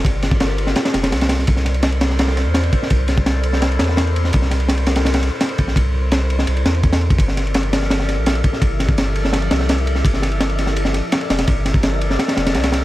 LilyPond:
<<
  \new Staff \with { instrumentName = "Ambient pad" } { \time 4/4 \key g \dorian \tempo 4 = 168 <f' g' a' bes' d''>2.~ <f' g' a' bes' d''>8 r8 | <e' a' bes' c'' d''>2. r4 | <e' a' bes' c'' d''>2.~ <e' a' bes' c'' d''>8 r8 | <e' a' bes' c'' d''>2. r4 |
<e' a' bes' c'' d''>2.~ <e' a' bes' c'' d''>8 r8 | <f g' a' bes' d''>2. r4 | <f g' a' bes' d''>2.~ <f g' a' bes' d''>8 r8 | <f g' a' bes' d''>2. r4 |
<f g' a' bes' d''>2.~ <f g' a' bes' d''>8 r8 | }
  \new Staff \with { instrumentName = "Synth texture" } { \time 4/4 \key g \dorian <c' c''>1~ | <c' c''>1~ | <c' c''>1~ | <c' c''>1~ |
<c' c''>1 | <e' e''>1~ | <e' e''>1~ | <e' e''>1~ |
<e' e''>1 | }
  \new Staff \with { instrumentName = "Sub bass" } { \clef bass \time 4/4 \key g \dorian g,,2 r8 f,,8 c,4 | c,2~ c,8. e,8. r8 | c,2~ c,8 e,4. | c,2~ c,8. r8. bes,,8 |
c,2 c,8 e,4. | g,,2~ g,,8. bes,,8. r8 | g,,2~ g,,8 c,4. | g,,2~ g,,8. r8. f,,8 |
g,,2 r8 f,,8 c,4 | }
  \new DrumStaff \with { instrumentName = "Drums" } \drummode { \time 4/4 <bd cymr>8 <cymr sn>16 bd16 <cymr sn>8 cymr16 sn16 <cymr sn>16 <cymr sn>16 <cymr sn>16 <cymr sn>16 <cymr sn>16 <cymr sn>16 <cymr sn>16 sn16 | <bd cymr>16 sn16 <cymr sn>16 cymr16 <cymr sn>16 cymr16 <cymr sn>16 sn16 <cymr sn>16 sn16 <cymr sn>8 <cymr sn>16 cymr16 <bd cymr>16 sn16 | <bd cymr>8 <cymr sn>16 bd16 <cymr sn>8 cymr16 sn16 <cymr sn>16 cymr16 <cymr sn>16 sn16 <cymr sn>16 cymr16 cymr16 sn16 | <bd cymr>16 sn16 <cymr sn>16 cymr16 <cymr sn>16 cymr16 <cymr sn>16 <cymr sn>16 <cymr sn>16 <cymr sn>16 <cymr sn>8 <cymr sn>16 cymr16 <bd cymr>16 sn16 |
<bd cymr>4 <cymr sn>8 cymr16 sn16 cymr16 cymr16 <cymr sn>16 cymr16 <bd cymr>16 <cymr sn>16 cymr16 <bd cymr>16 | <bd cymr>16 sn16 <cymr sn>16 cymr16 <cymr sn>16 cymr16 <cymr sn>16 sn16 <cymr sn>16 sn16 <cymr sn>8 <cymr sn>16 cymr16 <bd cymr>16 sn16 | <bd cymr>8 <cymr sn>16 bd16 <cymr sn>8 cymr16 sn16 <cymr sn>16 cymr16 <cymr sn>16 sn16 <cymr sn>16 cymr16 cymr16 sn16 | <bd cymr>16 sn16 <cymr sn>16 cymr16 <cymr sn>16 cymr16 <cymr sn>16 sn16 cymr16 sn16 <cymr sn>8 <cymr sn>16 cymr16 <cymr sn>16 <cymr sn>16 |
<bd cymr>8 <cymr sn>16 bd16 <cymr sn>8 cymr16 sn16 <cymr sn>16 <cymr sn>16 <cymr sn>16 <cymr sn>16 <cymr sn>16 <cymr sn>16 <cymr sn>8 | }
>>